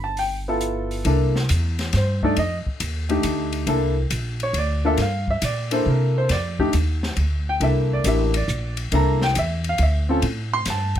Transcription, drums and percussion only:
0.17 open hi-hat
0.61 closed hi-hat
0.91 open hi-hat
1.05 ride
1.36 snare
1.49 hi-hat pedal, ride
1.79 snare, ride
1.93 snare, ride
2.23 kick
2.37 ride
2.67 kick
2.80 hi-hat pedal, ride
3.09 ride
3.23 hi-hat pedal, ride
3.52 ride
3.67 ride
4.10 hi-hat pedal, ride
4.40 ride
4.54 ride
4.97 snare, ride
5.28 kick
5.42 hi-hat pedal, ride
5.71 ride
6.29 snare, ride
6.59 kick
6.73 hi-hat pedal, ride
7.03 snare
7.17 ride
7.61 ride
8.04 hi-hat pedal, ride
8.34 ride
8.48 hi-hat pedal
8.77 ride
8.92 ride
9.21 snare
9.35 hi-hat pedal, ride
9.64 ride
9.78 ride
10.22 ride
10.65 snare, hi-hat pedal, ride
10.95 kick, ride

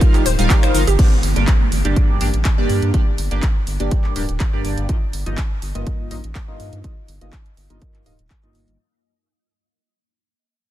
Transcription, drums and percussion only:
0.01 kick, closed hi-hat, cabasa
0.14 clap, closed hi-hat, cabasa
0.26 open hi-hat, cabasa
0.39 closed hi-hat, cabasa
0.50 kick, clap, closed hi-hat, cabasa
0.63 finger snap, closed hi-hat, cabasa
0.75 open hi-hat, cabasa
0.87 closed hi-hat, cabasa
0.99 kick, closed hi-hat, crash
1.23 open hi-hat
1.36 closed hi-hat
1.47 kick, clap, closed hi-hat
1.72 open hi-hat
1.85 closed hi-hat
1.96 kick, closed hi-hat
2.21 open hi-hat
2.34 closed hi-hat
2.45 kick, clap, closed hi-hat
2.69 open hi-hat
2.82 closed hi-hat
2.94 kick, closed hi-hat
3.18 open hi-hat
3.31 closed hi-hat
3.42 kick, clap, closed hi-hat
3.67 open hi-hat
3.80 closed hi-hat
3.91 kick, closed hi-hat
4.04 clap
4.16 open hi-hat
4.29 closed hi-hat
4.40 kick, clap, closed hi-hat
4.65 open hi-hat
4.78 closed hi-hat
4.89 kick, closed hi-hat
5.13 open hi-hat
5.26 closed hi-hat
5.37 kick, clap, closed hi-hat
5.62 open hi-hat
5.75 closed hi-hat
5.87 kick, closed hi-hat
6.11 open hi-hat
6.24 closed hi-hat
6.35 kick, clap, closed hi-hat
6.60 open hi-hat
6.73 closed hi-hat
6.84 kick, closed hi-hat
7.08 open hi-hat
7.21 closed hi-hat
7.33 kick, clap, closed hi-hat
7.46 closed hi-hat
7.57 open hi-hat
7.70 closed hi-hat
7.82 kick, closed hi-hat
7.94 clap, closed hi-hat
8.06 open hi-hat
8.19 closed hi-hat
8.30 kick, clap, closed hi-hat
8.43 closed hi-hat
8.55 open hi-hat
8.68 closed hi-hat

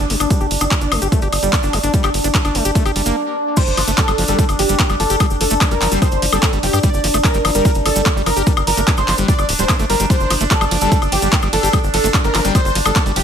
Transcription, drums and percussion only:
0.10 open hi-hat
0.20 closed hi-hat, cabasa, high woodblock
0.30 kick, closed hi-hat, cabasa
0.40 cabasa
0.51 open hi-hat
0.61 closed hi-hat, cabasa, high woodblock
0.71 kick, clap, closed hi-hat, cabasa
0.81 closed hi-hat, cabasa
0.92 open hi-hat, high woodblock
1.02 closed hi-hat, cabasa
1.12 kick, closed hi-hat, cabasa
1.22 closed hi-hat, cabasa
1.33 open hi-hat, high woodblock
1.43 closed hi-hat, cabasa
1.53 kick, clap, closed hi-hat, cabasa
1.63 cabasa
1.73 open hi-hat, high woodblock
1.83 closed hi-hat, cabasa
1.94 kick, closed hi-hat, cabasa
2.04 clap, closed hi-hat, cabasa, high woodblock
2.14 open hi-hat
2.24 closed hi-hat, cabasa
2.34 kick, clap, closed hi-hat, cabasa
2.45 closed hi-hat, cabasa, high woodblock
2.55 open hi-hat
2.65 closed hi-hat, cabasa
2.75 kick, closed hi-hat, cabasa
2.86 closed hi-hat, cabasa, high woodblock
2.96 open hi-hat
3.06 closed hi-hat, cabasa
3.57 kick, closed hi-hat, crash, cabasa
3.67 cabasa
3.77 open hi-hat, high woodblock
3.88 closed hi-hat, cabasa
3.98 kick, clap, closed hi-hat, cabasa
4.08 closed hi-hat, cabasa, high woodblock
4.18 open hi-hat
4.28 closed hi-hat, cabasa
4.39 kick, closed hi-hat, cabasa
4.49 closed hi-hat, cabasa, high woodblock
4.59 open hi-hat
4.69 closed hi-hat, cabasa
4.79 kick, clap, closed hi-hat, cabasa
4.89 cabasa, high woodblock
5.00 open hi-hat
5.10 closed hi-hat, cabasa
5.20 kick, closed hi-hat, cabasa, high woodblock
5.30 cabasa
5.41 open hi-hat
5.50 closed hi-hat, cabasa
5.61 kick, clap, closed hi-hat, cabasa, high woodblock
5.71 closed hi-hat, cabasa
5.81 clap, open hi-hat
5.92 closed hi-hat, cabasa
6.02 kick, closed hi-hat, cabasa, high woodblock
6.11 closed hi-hat, cabasa
6.22 open hi-hat
6.33 closed hi-hat, cabasa, high woodblock
6.43 kick, clap, closed hi-hat, cabasa
6.53 closed hi-hat, cabasa
6.63 open hi-hat
6.73 closed hi-hat, cabasa, high woodblock
6.83 kick, closed hi-hat, cabasa
6.94 cabasa
7.04 open hi-hat
7.14 closed hi-hat, cabasa, high woodblock
7.24 kick, clap, closed hi-hat, cabasa
7.34 closed hi-hat, cabasa
7.45 open hi-hat, high woodblock
7.55 closed hi-hat, cabasa
7.65 kick, closed hi-hat, cabasa
7.75 closed hi-hat, cabasa
7.86 open hi-hat, high woodblock
7.96 closed hi-hat, cabasa
8.06 kick, clap, closed hi-hat, cabasa
8.17 cabasa
8.26 open hi-hat, high woodblock
8.37 closed hi-hat, cabasa
8.47 kick, closed hi-hat, cabasa
8.57 cabasa, high woodblock
8.67 open hi-hat
8.77 closed hi-hat, cabasa
8.87 kick, clap, closed hi-hat, cabasa
8.97 closed hi-hat, cabasa, high woodblock
9.08 clap, open hi-hat
9.18 closed hi-hat, cabasa
9.28 kick, closed hi-hat, cabasa
9.39 closed hi-hat, cabasa, high woodblock
9.49 open hi-hat
9.59 closed hi-hat, cabasa
9.69 kick, clap, closed hi-hat, cabasa, high woodblock
9.79 closed hi-hat, cabasa
9.90 open hi-hat
10.00 closed hi-hat, cabasa
10.10 kick, closed hi-hat, ride, cabasa
10.20 cabasa
10.30 open hi-hat, ride, high woodblock
10.41 closed hi-hat, cabasa
10.51 kick, clap, closed hi-hat, ride, cabasa
10.61 closed hi-hat, cabasa, high woodblock
10.71 open hi-hat, ride
10.81 closed hi-hat, cabasa
10.92 kick, closed hi-hat, ride, cabasa
11.02 closed hi-hat, cabasa, high woodblock
11.12 open hi-hat, ride
11.22 closed hi-hat, cabasa
11.33 kick, clap, closed hi-hat, ride, cabasa
11.42 cabasa, high woodblock
11.53 open hi-hat, ride
11.63 closed hi-hat, cabasa
11.73 kick, closed hi-hat, ride, cabasa, high woodblock
11.84 cabasa
11.94 open hi-hat, ride
12.04 closed hi-hat, cabasa
12.14 kick, clap, closed hi-hat, ride, cabasa, high woodblock
12.24 closed hi-hat, cabasa
12.35 clap, open hi-hat, ride
12.45 closed hi-hat, cabasa
12.55 kick, closed hi-hat, ride, cabasa, high woodblock
12.65 closed hi-hat, cabasa
12.75 open hi-hat, ride
12.86 closed hi-hat, cabasa, high woodblock
12.95 kick, clap, closed hi-hat, ride, cabasa
13.06 closed hi-hat, cabasa
13.16 open hi-hat, ride

